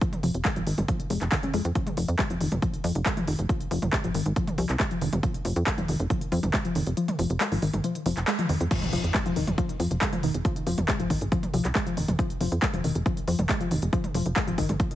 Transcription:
0.01 F3, kick, closed hi-hat
0.13 closed hi-hat, mid tom
0.23 F1 F3, open hi-hat
0.34 F1, closed hi-hat
0.45 G#3, kick, clap, closed hi-hat
0.56 G#1 F3, closed hi-hat
0.67 G#1 D#3, open hi-hat
0.78 G#1, closed hi-hat, mid tom
0.88 F3, kick, closed hi-hat
1.00 closed hi-hat
1.10 F1 G#3, open hi-hat
1.21 F1, clap, closed hi-hat
1.32 D#3, kick, clap, closed hi-hat
1.43 C#4, closed hi-hat, mid tom
1.54 F2 G#3, open hi-hat
1.65 F2, closed hi-hat
1.75 F3, kick, closed hi-hat
1.87 closed hi-hat, mid tom
1.97 F1 F3, open hi-hat
2.08 F2, closed hi-hat
2.19 G#3, kick, clap, closed hi-hat
2.30 F1 F3, closed hi-hat
2.41 F1 D#3, open hi-hat
2.52 F1, closed hi-hat, mid tom
2.62 F3, kick, closed hi-hat
2.74 closed hi-hat
2.84 F2 F3, open hi-hat
2.95 F1, closed hi-hat
3.06 G#3, kick, clap, closed hi-hat
3.17 F3, closed hi-hat, mid tom
3.28 F1 D#3, open hi-hat
3.39 F1, closed hi-hat
3.49 F3, kick, closed hi-hat
3.61 closed hi-hat
3.71 F1 F3, open hi-hat
3.82 F1, closed hi-hat, mid tom
3.93 G#3, kick, clap, closed hi-hat
4.04 G#1 F3, closed hi-hat
4.14 G#1 D#3, open hi-hat
4.26 G#1, closed hi-hat
4.36 F3, kick, closed hi-hat
4.47 closed hi-hat, mid tom
4.58 C2 F3, open hi-hat
4.69 C2, clap, closed hi-hat
4.80 G#3, kick, clap, closed hi-hat
4.91 F3, closed hi-hat
5.01 F1 D#3, open hi-hat
5.13 F1, closed hi-hat, mid tom
5.23 F3, kick, closed hi-hat
5.34 closed hi-hat
5.45 F1 F3, open hi-hat
5.56 F2, closed hi-hat
5.67 G#3, kick, clap, closed hi-hat
5.78 F1 F3, closed hi-hat, mid tom
5.88 F1 D#3, open hi-hat
6.00 F1, closed hi-hat
6.10 F3, kick, closed hi-hat
6.21 closed hi-hat
6.32 F2 F3, open hi-hat
6.43 F1, closed hi-hat, mid tom
6.54 G#3, kick, clap, closed hi-hat
6.65 F3, closed hi-hat
6.75 F1 D#3, open hi-hat
6.87 F1, closed hi-hat
6.97 F3, closed hi-hat
7.08 closed hi-hat, mid tom
7.19 F1 F3, open hi-hat
7.30 F1, closed hi-hat
7.41 G#3, clap, closed hi-hat
7.52 G#1 F3, open hi-hat
7.62 G#1 D#3, open hi-hat
7.74 G#1, closed hi-hat, mid tom
7.84 F3, closed hi-hat
7.95 closed hi-hat
8.06 F1 F3, open hi-hat
8.17 F1, clap, closed hi-hat
8.28 G#3, clap, closed hi-hat
8.39 F3, closed hi-hat, mid tom
8.49 F2 D#3, open hi-hat
8.61 F2, closed hi-hat
8.71 F3, kick, closed hi-hat, crash, impact
8.82 closed hi-hat, mid tom
8.93 F1 F3, open hi-hat
9.04 F2, closed hi-hat
9.14 G#3, kick, clap, closed hi-hat
9.26 F1 F3, closed hi-hat
9.36 F1 D#3, open hi-hat
9.47 F1, closed hi-hat, mid tom
9.58 F3, kick, closed hi-hat
9.69 closed hi-hat
9.80 F2 F3, open hi-hat
9.91 F1, closed hi-hat
10.01 G#3, kick, clap, closed hi-hat
10.13 F3, closed hi-hat, mid tom
10.23 F1 D#3, open hi-hat
10.34 F1, closed hi-hat
10.45 F3, kick, closed hi-hat
10.56 closed hi-hat
10.67 F1 F3, open hi-hat
10.78 F1, closed hi-hat, mid tom
10.88 G#3, kick, clap, closed hi-hat
11.00 G#1 F3, closed hi-hat
11.10 G#1 D#3, kick, open hi-hat
11.21 G#1, closed hi-hat
11.32 F3, kick, closed hi-hat
11.43 closed hi-hat, mid tom
11.54 C2 F3, open hi-hat
11.65 C2, clap, closed hi-hat
11.75 G#3, kick, clap, closed hi-hat
11.87 F3, closed hi-hat
11.97 F1 D#3, open hi-hat
12.08 F1, closed hi-hat, mid tom
12.19 F3, kick, closed hi-hat
12.30 closed hi-hat
12.41 F1 F3, open hi-hat
12.52 F2, closed hi-hat
12.62 G#3, kick, clap, closed hi-hat
12.74 F1 F3, closed hi-hat, mid tom
12.84 F1 D#3, open hi-hat
12.95 F1, closed hi-hat
13.06 F3, kick, closed hi-hat
13.17 closed hi-hat
13.28 F2 F3, open hi-hat
13.39 F1, closed hi-hat, mid tom
13.49 G#3, kick, clap, closed hi-hat
13.61 F3, closed hi-hat
13.71 F1 D#3, open hi-hat
13.82 F1, closed hi-hat
13.93 F3, kick, closed hi-hat
14.04 closed hi-hat, mid tom
14.15 F1 F3, open hi-hat
14.26 F1, closed hi-hat
14.36 G#3, kick, clap, closed hi-hat
14.48 G#1 F3, closed hi-hat
14.58 G#1 D#3, kick, open hi-hat
14.69 G#1, closed hi-hat, mid tom
14.80 F3, kick, closed hi-hat
14.91 closed hi-hat

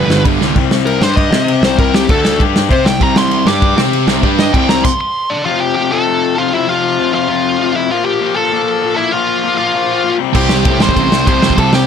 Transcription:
Already playing: G2 D3 G3 B4 B5
0.10 G1, snare
0.25 G1 G2 D3 G3, kick, ride
0.41 C2 G2 D3 G3, snare
0.56 C2 C3 G3 C4, kick, crash
0.71 snare
0.86 A#4, crash
1.01 G2 G3 D4 G4 C5, snare
1.16 D#5, kick, crash
1.32 C3 C4 G4 C5, snare
1.48 crash
1.62 C2 C3 G3 C4 C5, snare
1.79 A#4, kick, crash
1.94 G4, snare
2.09 D2 D3 A3 D4 A4, kick, crash
2.25 snare
2.40 G2 G3 D4 G4, kick, crash
2.56 snare
2.69 C3 C4 G4 C5, kick, crash
2.85 C2 C3 G3 G5, snare
3.01 C2 C3 G3 C4 A#5, kick, crash
3.16 C6, snare
3.31 crash
3.46 G2 G3 D4 G4 D6, snare
3.62 kick, crash
3.76 C3 C4 G4 C5, snare
3.93 crash
4.07 C2 C3 G3 C4, snare
4.23 G2 G3 D4 G4, kick, crash
4.39 D#5, snare
4.54 C2 C3 G3 C4 G5, kick, crash
4.69 A#5, snare
4.85 C6, kick, crash
5.01 C6
5.30 D4 D5
5.45 F2 C3 F3 F4 F5
5.60 G4 G5
5.75 F2 C3 F3 G4 G5
5.92 F2 C3 F3 A4 A5
6.07 F2 C3 F3
6.37 F2 C3 F3 F4 F5
6.52 F2 C3 F3 E4 E5
6.68 F2 C3 F3 F4 F5
6.99 F2 C3 F3
7.14 F2 C3 F3 F4 F5
7.28 F2 C3 F3
7.59 F2 C3 F3
7.75 F2 C3 F3 E4 E5
7.91 A#2 F3 A#3 F4 F5
8.04 G4 G5
8.21 A#2 F3 A#3
8.36 A#2 F3 A#3 A4 A5
8.52 A#2 F3 A#3
8.82 A#2 F3 A#3
8.96 A#2 F3 A#3 E4 E5
9.12 A#2 F3 A#3 F4 F5
9.44 A#2 F3 A#3
9.57 A#2 F3 A#3 F4 F5
9.74 A#2 F3 A#3
10.05 A#2 F3 A#3
10.19 C3 G3 C4
10.35 C2 C3 G3 C4 G4 G5, kick, crash
10.49 C2, snare
10.65 A2 C3 G3 C4, kick, ride
10.80 A1 C3 G3 C4 C5 C6, snare
10.89 kick
10.96 A1 C3 G3 C4, kick, ride
11.12 C2, snare
11.27 C2 C3 G3 C4 C5 C6, kick, ride
11.42 F2 C3 G3 C4, snare
11.50 kick
11.57 C2 C3 G3 C4 A4 A5, kick, ride
11.73 C2 G4 G5, snare

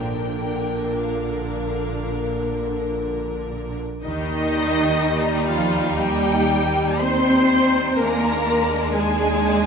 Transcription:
Already playing: A#1 A#2 D3 D4 G5
0.00 A#4
0.99 F5
4.02 D#2 D#3 G3 D#4 D#5
5.48 F3 F4 F5
5.97 G3 G4 G5
6.99 C4 C5 C6
7.95 D#2 G#3 A#3 D4 A#4 A#5
8.92 G#3 G#4 G#5

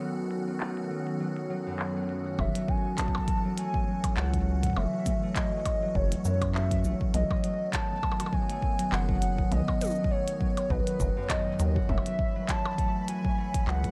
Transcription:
Already playing: D#3 F#3 A3 B3 C#4 F#4 A4 F#5
0.01 B3, closed hi-hat
0.31 F#4, closed hi-hat
0.48 F#3
0.60 A3, clap
0.77 closed hi-hat
0.90 F#3
1.07 closed hi-hat
1.20 F#3
1.37 closed hi-hat
1.50 F#3
1.66 F#2
1.79 F#4, clap, closed hi-hat
1.96 A3
2.09 F#3, closed hi-hat
2.26 F#4
2.39 F#1 E3 E5, kick, mid tom, percussion blips
2.55 F#3, closed hi-hat
2.61 A3
2.68 G#5, kick
2.98 B3 A5, kick, clap, closed hi-hat
3.08 kick
3.15 kick, percussion blips
3.28 F#4, kick, closed hi-hat
3.45 F#3
3.58 A3 G#5, closed hi-hat
3.74 kick
3.88 F#3
4.04 kick, closed hi-hat, percussion blips
4.17 C#2 F#3 F#5, clap
4.34 kick, closed hi-hat
4.63 B3, kick, closed hi-hat
4.67 kick
4.70 kick
4.73 F#1 E5, kick, mid tom, percussion blips
4.93 F#4
5.06 F#3, kick, closed hi-hat, mid tom, cabasa
5.23 A3
5.36 D#5, kick, clap, closed hi-hat
5.53 F#3
5.66 kick, closed hi-hat, percussion blips
5.82 F#3
5.95 F#1 C#5, kick
6.12 closed hi-hat
6.25 F#2 B3, cabasa
6.42 kick, closed hi-hat, percussion blips
6.55 F#4 E5, clap
6.71 F#3, kick, closed hi-hat
6.84 A1 A3, cabasa
7.01 kick
7.14 B1 D#3 F#3 D#5, closed hi-hat, mid tom
7.31 kick, percussion blips
7.38 B3
7.44 F#3, closed hi-hat
7.73 A5, kick, clap, closed hi-hat
7.90 B3
8.03 kick, percussion blips
8.12 percussion blips
8.20 F#4, closed hi-hat, percussion blips
8.26 percussion blips
8.33 F#3 G#5, kick
8.49 A3, closed hi-hat
8.62 kick
8.79 F#3, closed hi-hat
8.92 F#1 F#5, clap, percussion blips
9.09 F#3, kick
9.22 closed hi-hat
9.38 kick
9.51 B1 B3 D#5, closed hi-hat, mid tom
9.68 kick, percussion blips
9.81 F#4 D#5, closed hi-hat, mid tom, cabasa
9.84 cabasa
9.87 cabasa
9.90 cabasa
9.91 cabasa
9.95 F#3, cabasa
10.04 kick
10.11 A3 C#5
10.28 closed hi-hat
10.41 F#3, kick
10.57 closed hi-hat, percussion blips
10.70 B1 F#3 B4, kick
10.87 closed hi-hat
11.00 F#1 F#3, kick, cabasa
11.17 F#2
11.30 F#4 D#5, kick, clap, closed hi-hat, percussion blips
11.46 A3
11.59 D#2 F#3, closed hi-hat, cabasa
11.76 F#4, kick
11.89 F#1 E3 E5 B5, kick, mid tom
11.98 percussion blips
12.06 F#3, closed hi-hat
12.16 A3 C#4, kick
12.23 F#4
12.36 F#3
12.49 A5, kick, clap, closed hi-hat
12.65 percussion blips
12.78 A3, kick, closed hi-hat
13.05 F#4 A4 G#5, closed hi-hat
13.25 F#3, kick
13.38 A3
13.54 kick, closed hi-hat
13.67 C#2 F#3 F#5, clap
13.84 kick, closed hi-hat

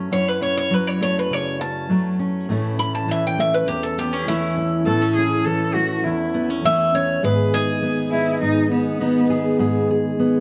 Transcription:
Already playing: A3 C#4 E4
0.11 F#2 E4 C#5
0.28 B4
0.41 C#4 C#5
0.57 C#5
0.70 F#3 B4
0.87 C#5
1.01 A3 C#5
1.19 B4
1.30 C#3 C#5
1.61 C#4 A5
1.90 F#3 A3
2.19 C#4
2.49 A2 E3 A3 C#4 E4 A4
2.79 C#4 B5
2.95 A5
3.08 E3 E5
3.27 G5
3.38 A3 E5
3.54 B4
3.67 E2 G4
3.83 A4
3.98 B3 G4
4.13 C#4
4.28 E3 A3 E4
4.58 C#4
4.86 A2 B3 A4
5.02 C#4
5.16 C#4 G#4
5.45 E3 A4
5.74 A3 F#4
6.04 E2 E4
6.34 B3
6.50 C#4
6.64 E3 A3 E5
6.94 C#4 C#5
7.23 G#2 D#3 B3 G#4 B4
7.54 D#4 G#4
7.83 B3
8.11 D#4 E4
8.41 G#2 D#4
8.71 B3 D#4
9.00 B3 D#4
9.30 G#4
9.59 G#2 G#4
9.91 G#4
10.19 B3

